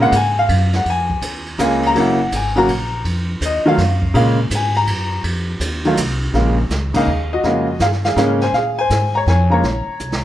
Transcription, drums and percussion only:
0.12 hi-hat pedal medium
0.12 ride medium
0.49 ride medium
0.73 snare medium
0.86 ride medium
1.10 kick soft
1.22 hi-hat pedal medium
1.22 ride medium
1.46 ride medium
1.59 hi-hat pedal medium
1.59 ride medium
1.83 ride medium
1.95 ride medium
2.32 hi-hat pedal medium
2.32 ride medium
2.56 ride medium
2.69 ride medium
3.05 ride medium
3.41 hi-hat pedal medium
3.41 ride medium
3.78 snare soft
3.78 ride medium
4.02 kick medium
4.15 ride medium
4.51 hi-hat pedal medium
4.51 ride medium
4.74 ride medium
4.87 ride medium
5.24 ride medium
5.61 hi-hat pedal medium
5.61 ride medium
5.85 ride medium
5.97 hi-hat pedal medium
5.97 ride medium
6.21 ride soft
6.34 brush sweep soft
6.34 snare soft
6.70 snare medium
6.70 hi-hat pedal soft
6.94 kick medium
6.94 crash medium
7.44 brush sweep soft
7.44 snare soft
7.80 snare medium
7.80 hi-hat pedal medium
7.92 snare soft
8.04 snare soft
8.17 snare medium
8.17 hi-hat pedal medium
8.41 snare soft
8.54 brush sweep soft
8.54 snare soft
8.90 snare medium
8.90 hi-hat pedal medium
9.27 snare soft
9.63 brush sweep soft
9.63 snare soft
10.00 hi-hat pedal medium
10.12 snare medium

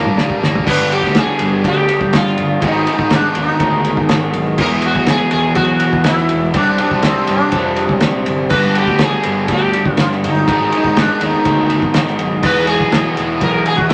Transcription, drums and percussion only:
0.06 mid tom medium
0.18 snare medium
0.28 kick medium
0.28 high conga medium
0.41 snare loud
0.41 low conga medium
0.53 floor tom medium
0.53 high conga medium
0.67 kick loud
0.67 crash loud
0.78 high conga medium
0.92 ride medium
1.03 kick medium
1.03 snare soft
1.15 snare loud
1.15 ride loud
1.27 high conga medium
1.39 ride medium
1.39 low conga medium
1.64 kick medium
1.64 ride loud
1.88 ride medium
2.00 kick medium
2.00 low conga medium
2.13 snare loud
2.13 ride loud
2.26 snare soft
2.38 ride medium
2.38 low conga medium
2.49 high conga medium
2.62 kick loud
2.62 ride loud
2.74 high conga medium
2.87 ride medium
2.99 kick medium
3.10 snare loud
3.10 ride medium
3.23 high conga medium
3.35 ride medium
3.35 low conga medium
3.60 kick medium
3.60 ride loud
3.84 ride medium
3.97 kick medium
3.97 low conga medium
4.09 snare loud
4.09 ride loud
4.33 ride medium
4.33 low conga medium
4.47 high conga medium
4.58 kick loud
4.58 crash loud
4.71 high conga medium
4.82 ride medium
4.95 kick medium
5.06 snare loud
5.06 ride loud
5.20 high conga medium
5.31 ride medium
5.31 low conga medium
5.55 kick medium
5.55 ride loud
5.80 ride medium
5.93 kick medium
5.93 low conga medium
6.04 snare loud
6.04 ride loud
6.18 snare soft
6.29 ride medium
6.29 low conga medium
6.43 high conga medium
6.54 kick loud
6.54 ride loud
6.68 high conga medium
6.78 ride medium
6.91 kick medium
7.02 snare loud
7.02 ride loud
7.17 high conga medium
7.27 snare soft
7.27 ride medium
7.27 low conga medium
7.52 kick medium
7.52 ride loud
7.52 high conga medium
7.76 ride medium
7.89 kick medium
7.89 high conga medium
8.00 snare loud
8.00 ride loud
8.00 high conga medium
8.16 high conga medium
8.26 ride medium
8.26 low conga medium
8.38 low conga medium
8.50 kick loud
8.50 crash loud
8.64 high conga medium
8.75 ride medium
8.87 kick medium
8.99 snare loud
8.99 ride medium
9.12 high conga medium
9.23 ride medium
9.23 low conga medium
9.48 kick medium
9.48 ride loud
9.73 ride medium
9.86 kick medium
9.86 low conga medium
9.97 snare loud
9.97 ride loud
10.12 snare soft
10.23 ride medium
10.23 low conga medium
10.35 high conga medium
10.48 kick loud
10.48 ride loud
10.60 high conga medium
10.72 ride medium
10.84 kick medium
10.97 snare loud
10.97 ride loud
11.08 high conga medium
11.21 ride medium
11.45 kick medium
11.45 ride loud
11.70 ride medium
11.82 kick medium
11.82 low conga medium
11.94 snare loud
11.94 ride loud
12.08 snare soft
12.19 ride medium
12.19 low conga medium
12.31 high conga medium
12.43 kick loud
12.43 crash loud
12.55 high conga medium
12.67 ride medium
12.80 kick medium
12.92 snare loud
12.92 ride loud
13.04 high conga medium
13.17 snare soft
13.17 ride medium
13.17 low conga medium
13.41 kick medium
13.41 ride loud
13.66 ride medium
13.78 kick medium
13.78 low conga medium
13.90 ride loud

